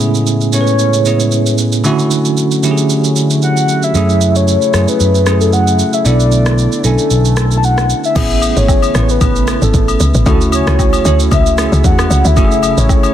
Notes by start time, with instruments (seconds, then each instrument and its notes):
Already playing: tine electric piano A2 B3 C#4 E4 G#4, analog synth pad C#3 G#3 A3 E4
0.00 shaker
0.15 shaker
0.27 shaker
0.41 shaker
0.52 tine electric piano A2 B3 C#4 E4 A4, soft synth lead C#5, shaker
0.61 tine electric piano B4
0.67 shaker
0.79 shaker
0.93 shaker
1.05 tine electric piano A2 B3 C#4 E4 G#4, shaker
1.20 shaker
1.32 shaker
1.46 shaker
1.58 shaker
1.72 shaker
1.84 tine electric piano D3 A3 C#4 E4 F#4, analog synth pad D3 F#3 C#4 E4, shaker
1.99 shaker
2.11 shaker
2.25 shaker
2.37 shaker
2.51 shaker
2.63 tine electric piano D3 A3 C#4 E4 G4, shaker
2.71 tine electric piano G#4
2.78 shaker
2.90 shaker
3.04 shaker
3.16 shaker
3.30 shaker
3.42 soft synth lead F#5, shaker
3.57 shaker
3.69 shaker
3.83 soft synth lead E5, shaker
3.94 fingered electric bass F#2, analog synth pad C#3 F#3 A3, tine electric piano A3 C#4 E4 G#4, shaker
4.09 shaker
4.21 shaker
4.35 soft synth lead C#5, shaker
4.48 shaker
4.62 shaker
4.73 fingered electric bass F#2, tine electric piano A3 C#4 E4 G#4, cross-stick, shaker
4.88 soft synth lead B4, shaker
5.00 fingered electric bass F#2, shaker
5.15 shaker
5.26 tine electric piano A3 C#4 E4 G#4, cross-stick, shaker
5.41 soft synth lead A4, shaker
5.53 soft synth lead F#5, shaker
5.67 shaker
5.79 shaker
5.93 soft synth lead E5, shaker
6.05 fingered electric bass B1, analog synth pad D3 B3, tine electric piano B3 D4 E4 A4, soft synth lead D5, shaker
6.20 shaker
6.32 shaker
6.46 cross-stick, shaker
6.58 shaker
6.72 shaker
6.84 fingered electric bass B1, tine electric piano C#4 D4 E4 G#5, soft synth lead A4, shaker
6.98 shaker
7.11 fingered electric bass B1, shaker
7.25 shaker
7.37 cross-stick, shaker
7.51 shaker
7.58 soft synth lead A5
7.63 soft synth lead F#5, shaker
7.78 cross-stick, shaker
7.90 shaker
8.04 soft synth lead E5, shaker
8.15 log drum bass A1, analog synth pad C#3 E3 A3 E4, tine electric piano B3 C4 E4 G#4, kick, crash, high agogo, shaker
8.23 tine electric piano C#4
8.30 shaker
8.42 high agogo, shaker
8.57 log drum bass G#1, soft synth lead C#5, shaker
8.68 kick, low woodblock, shaker
8.82 high agogo, shaker
8.94 log drum bass A1, tine electric piano B3 C#4 E4 B4, cross-stick, shaker
9.03 soft synth lead C#5
9.09 soft synth lead B4, shaker
9.21 log drum bass A1, kick, high agogo, shaker
9.36 shaker
9.48 cross-stick, high agogo, shaker
9.62 log drum bass G#1, soft synth lead A4, shaker
9.74 log drum bass A1, kick, shaker
9.88 high agogo, shaker
10.00 log drum bass C#2, shaker
10.14 log drum bass A1, shaker
10.26 log drum bass D2, analog synth pad C#3 F#3 C#4, tine electric piano A3 C#4 E4 F#4, soft synth lead A4, kick, high agogo, shaker
10.41 shaker
10.52 soft synth lead C#5, high agogo, shaker
10.67 log drum bass C#2, tine electric piano A3 C#4 E4 F#4, cross-stick, shaker
10.79 kick, low woodblock, shaker
10.93 high agogo, shaker
11.05 log drum bass D2, tine electric piano A3 C#4 E4 A4, soft synth lead C#5, shaker
11.20 shaker
11.31 log drum bass C#2, soft synth lead E5, kick, high agogo, shaker
11.46 shaker
11.57 tine electric piano A3 C#4 E4 G#4, soft synth lead E5, cross-stick, high agogo, shaker
11.72 log drum bass C#2, shaker
11.84 log drum bass E2, soft synth lead F#5, kick, shaker
11.99 cross-stick, high agogo, shaker
12.10 log drum bass C#2, shaker
12.25 log drum bass D2, soft synth lead E5, shaker
12.36 log drum bass F#1, analog synth pad C#3 A3, tine electric piano A3 C#4 E4 F#4, kick, high agogo, shaker
12.45 tine electric piano G#4
12.51 shaker
12.63 high agogo, shaker
12.78 log drum bass A1, soft synth lead C#5, shaker
12.89 kick, low woodblock, shaker
13.03 high agogo, shaker